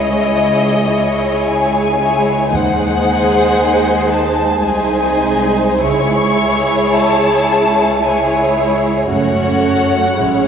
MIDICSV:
0, 0, Header, 1, 6, 480
1, 0, Start_track
1, 0, Key_signature, 4, "minor"
1, 0, Tempo, 1147228
1, 617, Tempo, 1052632
1, 1101, Time_signature, 3, 2, 24, 8
1, 2057, Tempo, 1183432
1, 2537, Tempo, 1117318
1, 3017, Tempo, 1088929
1, 4579, End_track
2, 0, Start_track
2, 0, Title_t, "Violin section"
2, 0, Program_c, 0, 48
2, 0, Note_on_c, 0, 75, 62
2, 613, Note_on_c, 0, 80, 61
2, 617, Note_off_c, 0, 75, 0
2, 1090, Note_off_c, 0, 80, 0
2, 1096, Note_on_c, 0, 78, 68
2, 1815, Note_off_c, 0, 78, 0
2, 1817, Note_on_c, 0, 81, 62
2, 2055, Note_on_c, 0, 80, 55
2, 2057, Note_off_c, 0, 81, 0
2, 2536, Note_off_c, 0, 80, 0
2, 2538, Note_on_c, 0, 85, 67
2, 3015, Note_on_c, 0, 81, 74
2, 3017, Note_off_c, 0, 85, 0
2, 3490, Note_off_c, 0, 81, 0
2, 3502, Note_on_c, 0, 80, 54
2, 3739, Note_off_c, 0, 80, 0
2, 3975, Note_on_c, 0, 78, 66
2, 4579, Note_off_c, 0, 78, 0
2, 4579, End_track
3, 0, Start_track
3, 0, Title_t, "Violin section"
3, 0, Program_c, 1, 48
3, 0, Note_on_c, 1, 68, 35
3, 0, Note_on_c, 1, 73, 39
3, 359, Note_off_c, 1, 73, 0
3, 360, Note_off_c, 1, 68, 0
3, 369, Note_on_c, 1, 73, 40
3, 370, Note_on_c, 1, 68, 39
3, 855, Note_off_c, 1, 73, 0
3, 856, Note_off_c, 1, 68, 0
3, 863, Note_on_c, 1, 68, 39
3, 864, Note_on_c, 1, 73, 39
3, 1095, Note_off_c, 1, 68, 0
3, 1096, Note_off_c, 1, 73, 0
3, 1101, Note_on_c, 1, 72, 48
3, 1104, Note_on_c, 1, 68, 56
3, 2039, Note_off_c, 1, 72, 0
3, 2040, Note_off_c, 1, 68, 0
3, 2058, Note_on_c, 1, 68, 50
3, 2061, Note_on_c, 1, 72, 48
3, 2528, Note_off_c, 1, 68, 0
3, 2529, Note_off_c, 1, 72, 0
3, 2540, Note_on_c, 1, 68, 54
3, 2541, Note_on_c, 1, 73, 58
3, 3485, Note_off_c, 1, 68, 0
3, 3501, Note_off_c, 1, 73, 0
3, 3506, Note_on_c, 1, 68, 50
3, 3506, Note_on_c, 1, 73, 51
3, 3967, Note_off_c, 1, 68, 0
3, 3967, Note_off_c, 1, 73, 0
3, 3973, Note_on_c, 1, 66, 48
3, 3974, Note_on_c, 1, 73, 46
3, 4435, Note_off_c, 1, 66, 0
3, 4436, Note_off_c, 1, 73, 0
3, 4455, Note_on_c, 1, 64, 42
3, 4456, Note_on_c, 1, 73, 40
3, 4579, Note_off_c, 1, 64, 0
3, 4579, Note_off_c, 1, 73, 0
3, 4579, End_track
4, 0, Start_track
4, 0, Title_t, "Viola section"
4, 0, Program_c, 2, 48
4, 0, Note_on_c, 2, 56, 37
4, 0, Note_on_c, 2, 64, 37
4, 360, Note_off_c, 2, 56, 0
4, 361, Note_off_c, 2, 64, 0
4, 369, Note_on_c, 2, 56, 41
4, 370, Note_on_c, 2, 64, 39
4, 855, Note_off_c, 2, 56, 0
4, 856, Note_off_c, 2, 64, 0
4, 864, Note_on_c, 2, 56, 39
4, 864, Note_on_c, 2, 64, 36
4, 1096, Note_off_c, 2, 56, 0
4, 1096, Note_off_c, 2, 64, 0
4, 1100, Note_on_c, 2, 56, 50
4, 1101, Note_on_c, 2, 63, 42
4, 2039, Note_off_c, 2, 56, 0
4, 2039, Note_off_c, 2, 63, 0
4, 2056, Note_on_c, 2, 63, 46
4, 2057, Note_on_c, 2, 56, 47
4, 2527, Note_off_c, 2, 56, 0
4, 2527, Note_off_c, 2, 63, 0
4, 2535, Note_on_c, 2, 56, 46
4, 2537, Note_on_c, 2, 64, 44
4, 3482, Note_off_c, 2, 56, 0
4, 3497, Note_off_c, 2, 64, 0
4, 3502, Note_on_c, 2, 56, 46
4, 3502, Note_on_c, 2, 64, 44
4, 3965, Note_off_c, 2, 56, 0
4, 3965, Note_off_c, 2, 64, 0
4, 3976, Note_on_c, 2, 61, 39
4, 3978, Note_on_c, 2, 57, 44
4, 4437, Note_off_c, 2, 61, 0
4, 4438, Note_off_c, 2, 57, 0
4, 4453, Note_on_c, 2, 56, 42
4, 4454, Note_on_c, 2, 61, 42
4, 4579, Note_off_c, 2, 56, 0
4, 4579, Note_off_c, 2, 61, 0
4, 4579, End_track
5, 0, Start_track
5, 0, Title_t, "Cello section"
5, 0, Program_c, 3, 48
5, 0, Note_on_c, 3, 37, 41
5, 73, Note_off_c, 3, 37, 0
5, 124, Note_on_c, 3, 37, 48
5, 559, Note_off_c, 3, 37, 0
5, 615, Note_on_c, 3, 37, 44
5, 1045, Note_off_c, 3, 37, 0
5, 1099, Note_on_c, 3, 39, 39
5, 2038, Note_off_c, 3, 39, 0
5, 2055, Note_on_c, 3, 36, 48
5, 2536, Note_off_c, 3, 36, 0
5, 2537, Note_on_c, 3, 37, 50
5, 3956, Note_off_c, 3, 37, 0
5, 3971, Note_on_c, 3, 42, 43
5, 4434, Note_off_c, 3, 42, 0
5, 4451, Note_on_c, 3, 44, 46
5, 4579, Note_off_c, 3, 44, 0
5, 4579, End_track
6, 0, Start_track
6, 0, Title_t, "Double bass section"
6, 0, Program_c, 4, 48
6, 0, Note_on_c, 4, 37, 45
6, 64, Note_off_c, 4, 37, 0
6, 1099, Note_on_c, 4, 39, 47
6, 1560, Note_off_c, 4, 39, 0
6, 2536, Note_on_c, 4, 37, 47
6, 2999, Note_off_c, 4, 37, 0
6, 3974, Note_on_c, 4, 30, 46
6, 4436, Note_off_c, 4, 30, 0
6, 4453, Note_on_c, 4, 32, 43
6, 4579, Note_off_c, 4, 32, 0
6, 4579, End_track
0, 0, End_of_file